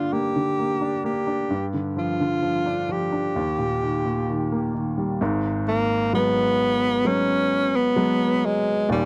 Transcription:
Already playing: G2 D3 A#3 D4 F4
0.13 A#3 G4
0.36 D3
0.59 A#3
0.81 D4
1.04 A#3 G4
1.27 D4
1.50 G2
1.74 D3
1.97 F3 F4
2.20 D3
2.42 F3
2.66 D4
2.89 F3 G4
3.12 D4
3.36 D#2
3.58 A#2
3.82 D#3
4.05 A#2
4.29 D#3
4.52 A#3
4.74 D#3
4.98 G3
5.21 G#1 G#2
5.68 A#3
6.13 F#3 G#3 B3
7.05 F#3 G#3 B3 C#4
7.76 B3
7.96 F#3 G#3 B3
8.46 G#3
8.89 D#1 D#2 G3

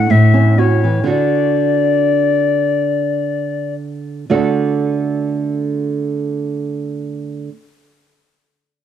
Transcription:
Already playing: A3 F#5
0.10 A2 E5
0.34 C#4
0.58 C#4 F#4 C#5
0.84 E3
1.04 D3 D4 F#4
1.10 D5
4.30 D3 A3 F#4 A4 D5 F#5

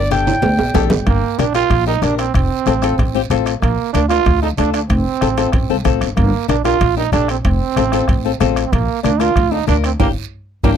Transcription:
Already playing: G1
0.11 D4 G4 A4 G5, bombo rim, cowbell, high conga, short guiro
0.27 high conga, high timbale, short guiro
0.42 D2, cowbell, high conga, low timbale, long guiro
0.59 A#1, low timbale
0.74 A1 D4 G4 A4, bombo low, bombo rim, cowbell, low conga, low timbale, short guiro
0.90 G1, low conga, low timbale, short guiro
1.06 G1 A#3, bombo low, bombo rim, high conga, high timbale, long guiro
1.38 A#1 D4 G4 A#4, bombo rim, high conga, high timbale, short guiro
1.54 D4 F4 G4 A#4, bombo rim, high timbale, short guiro
1.70 A#1, bombo low, bombo rim, high conga, low conga, high timbale, long guiro
1.86 D4 D#4 G4 A#4
2.02 A#1 D4 G4 A#4, bombo rim, high conga, low conga, high timbale, short guiro
2.18 C4, bombo rim, high timbale, short guiro
2.34 F1 C4, bombo low, bombo rim, high conga, high timbale, long guiro
2.66 A1 C4 F4 A4, bombo rim, high conga, high timbale, short guiro
2.82 C4 F4 A4, bombo rim, high timbale, short guiro
2.98 A1, bombo low, bombo rim, high conga, low conga, high timbale, long guiro
3.15 C4 F4 G4
3.30 A1 C4 F4 A4, bombo rim, high conga, low conga, high timbale, short guiro
3.46 bombo rim, high timbale, short guiro
3.61 A#1 A#3, bombo low, bombo rim, high conga, high timbale, long guiro
3.93 D2 D4 F4 A#4, bombo rim, high conga, high timbale, short guiro
4.09 D4 F4 A#4, bombo rim, high timbale, short guiro
4.26 D2, bombo low, bombo rim, high conga, low conga, high timbale, long guiro
4.42 D4 D#4 F4 A4
4.57 D2 D4 F4 A4, bombo rim, high conga, high timbale, short guiro
4.73 D4, bombo rim, high timbale, short guiro
4.89 F1 C4, bombo low, bombo rim, high conga, high timbale, long guiro
5.21 A1 C4 F4 A4, bombo rim, high conga, high timbale, short guiro
5.37 C4 F4 A4, bombo rim, high timbale, short guiro
5.52 A1, bombo low, bombo rim, high conga, low conga, high timbale, long guiro
5.70 C2 C4 F4 A4
5.84 A1 C4 F4 A4, bombo low, bombo rim, high conga, high timbale, short guiro
6.01 G1, bombo rim, high timbale, short guiro
6.17 G1 A#3, bombo low, bombo rim, high conga, low conga, high timbale, long guiro
6.48 A#1 D4 G4 A#4, bombo rim, high conga, high timbale, short guiro
6.64 D4 F4 G4 A#4, bombo rim, high timbale, short guiro
6.81 A#1, bombo low, bombo rim, high conga, low conga, high timbale, long guiro
6.97 D4 D#4 G4 A#4
7.12 A#1 D4 G4 A4, bombo rim, high conga, low conga, high timbale, short guiro
7.28 C4, bombo rim, high timbale, short guiro
7.44 F1 C4, bombo low, bombo rim, high conga, high timbale, long guiro
7.76 A1 C4 F4 A4, bombo rim, high conga, high timbale, short guiro
7.92 C4 F4 A4, bombo rim, high timbale, short guiro
8.08 A1, bombo low, bombo rim, high conga, low conga, high timbale, long guiro
8.25 C4 F4 A4
8.40 A1 C4 F4 A4, bombo rim, high conga, low conga, high timbale, low timbale, short guiro
8.56 bombo rim, high timbale, short guiro
8.66 C4
8.72 A#1 A#3, bombo low, bombo rim, high conga, low conga, high timbale, long guiro
9.03 D2 D4 F4 A#4, bombo rim, high conga, high timbale, short guiro
9.20 D4 F4 A#4, bombo rim, high timbale, short guiro
9.36 D2, bombo low, bombo rim, high conga, low conga, high timbale, long guiro
9.51 D4 D#4 F4 A4
9.67 D2 D4 F4 A#4, bombo rim, high conga, low conga, high timbale, short guiro
9.84 C4, bombo rim, high timbale, short guiro
10.00 G1 A#3 D4 G4, bombo low, low conga, high timbale, long guiro
10.64 G1 A#3 D4 G4, bombo low, low conga, high timbale, long guiro

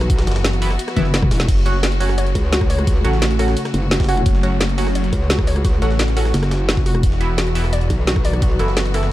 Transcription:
Already playing: E3 B3 F#4
0.01 cross-stick, snare, closed hi-hat
0.10 B1, kick, closed hi-hat, ride
0.18 snare, ride
0.27 F#1, snare, closed hi-hat, ride
0.32 snare, ride
0.36 snare, ride
0.44 snare, closed hi-hat, ride
0.53 snare, closed hi-hat
0.62 E3 B3 E4, open hi-hat, ride
0.70 cross-stick, snare
0.79 closed hi-hat, ride
0.88 cross-stick, snare, closed hi-hat
0.96 F#1 E3 B3 E4, kick, closed hi-hat, high tom, ride
1.05 snare
1.14 snare, closed hi-hat, ride
1.22 kick, cross-stick, mid tom
1.31 E1, snare, open hi-hat, ride
1.40 cross-stick, snare
1.48 F#1 C#3 A3, kick, closed hi-hat, crash, ride
1.57 snare
1.66 F#3 C#4 F#4, closed hi-hat, ride
1.83 F#4, snare, closed hi-hat, ride
1.92 closed hi-hat
2.00 F#3 C#4 F#4, snare, open hi-hat, ride
2.09 cross-stick, snare
2.18 C#5, closed hi-hat, ride
2.27 closed hi-hat
2.35 C#2, kick, closed hi-hat, ride
2.53 F#4, snare, closed hi-hat, ride
2.61 kick, cross-stick
2.70 C#5, open hi-hat, ride
2.79 cross-stick, closed hi-hat
2.87 C#2 F#4, kick, closed hi-hat, ride
3.04 A1 F#3 C#4 F#4 A4, closed hi-hat, ride
3.13 snare
3.22 F#4, snare, closed hi-hat, ride
3.31 snare, closed hi-hat
3.39 F#3 C#4 F#4 A4, open hi-hat, ride
3.48 cross-stick, snare
3.57 closed hi-hat, ride
3.65 cross-stick, snare, closed hi-hat
3.74 F#1, closed hi-hat, ride
3.91 F#4, snare, closed hi-hat, ride
4.00 kick, snare, ride
4.04 snare, ride
4.09 F#3 C#4 F#4, open hi-hat, ride
4.17 closed hi-hat
4.26 F#1, kick, closed hi-hat, ride
4.35 snare
4.43 F#3 C#4 F#4, closed hi-hat, ride
4.61 F#4, snare, closed hi-hat, ride
4.69 closed hi-hat
4.78 F#3 C#4 F#4, snare, open hi-hat, ride
4.87 cross-stick, snare
4.95 C#5, closed hi-hat, ride
5.04 closed hi-hat
5.13 C#2, kick, closed hi-hat, ride
5.30 F#4, snare, closed hi-hat, ride
5.39 kick, cross-stick
5.47 C#5, open hi-hat, ride
5.56 cross-stick, closed hi-hat
5.65 C#2 F#4, kick, closed hi-hat, ride
5.82 A1 F#3 C#4 F#4 A4, closed hi-hat, ride
5.91 snare
5.99 F#4, snare, closed hi-hat, ride
6.08 snare, closed hi-hat
6.17 F#3 C#4 F#4 A4, open hi-hat, ride
6.25 cross-stick, snare
6.34 F#1, snare, closed hi-hat, ride
6.43 cross-stick, snare, closed hi-hat
6.51 snare, closed hi-hat, ride
6.69 F#4, snare, closed hi-hat, ride
6.77 kick, snare
6.82 F1
6.86 F#4, open hi-hat, ride
6.95 cross-stick, closed hi-hat
7.03 E1 E3 B3 F#4, kick, closed hi-hat, ride
7.12 snare
7.21 E3 B3 E4, closed hi-hat, ride
7.38 F#4, snare, closed hi-hat, ride
7.47 closed hi-hat
7.55 E3 B3 E4, snare, open hi-hat, ride
7.64 cross-stick, snare
7.73 D5, closed hi-hat, ride
7.81 closed hi-hat
7.90 B1, kick, closed hi-hat, ride
8.07 F#4, snare, closed hi-hat, ride
8.16 kick, cross-stick
8.25 D5, open hi-hat, ride
8.33 cross-stick, closed hi-hat
8.42 B1 F#4, kick, closed hi-hat, ride
8.59 F#1 E3 B3 E4 A4, closed hi-hat, ride
8.68 snare
8.77 F#4, snare, closed hi-hat, ride
8.85 snare, closed hi-hat
8.94 E3 B3 E4 A4, open hi-hat, ride
9.03 cross-stick, snare

